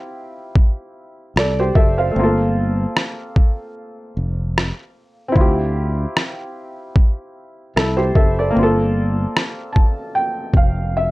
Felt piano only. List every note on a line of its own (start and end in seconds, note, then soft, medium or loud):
0.00 1.68 C4 medium
0.00 1.70 E4 medium
0.00 1.72 F4 medium
0.00 1.34 G4 medium
1.38 1.58 A4 soft
1.38 1.58 D5 medium
1.59 1.75 G4 medium
1.59 1.75 C5 medium
1.75 1.97 A4 medium
1.75 1.97 E5 medium
1.98 2.36 C5 soft
1.98 2.36 F5 medium
2.11 2.21 A3 medium
2.15 5.33 A#3 medium
2.15 5.27 C4 medium
2.20 5.33 F4 medium
2.20 5.35 A4 medium
5.28 8.08 C4 medium
5.28 7.70 E4 medium
5.37 7.72 F4 medium
5.41 7.74 G4 medium
7.76 7.98 E4 soft
7.76 7.97 A4 medium
7.97 8.14 G4 medium
7.97 8.14 C5 medium
8.16 8.37 A4 medium
8.16 8.37 E5 medium
8.39 8.61 A4 soft
8.39 8.77 D5 medium
8.51 11.11 A#3 medium
8.55 11.11 C4 medium
8.55 10.93 F4 medium
8.63 10.95 A4 medium
9.73 10.11 A5 medium
10.15 10.52 G5 medium
10.57 10.93 F5 medium
10.97 11.11 E5 medium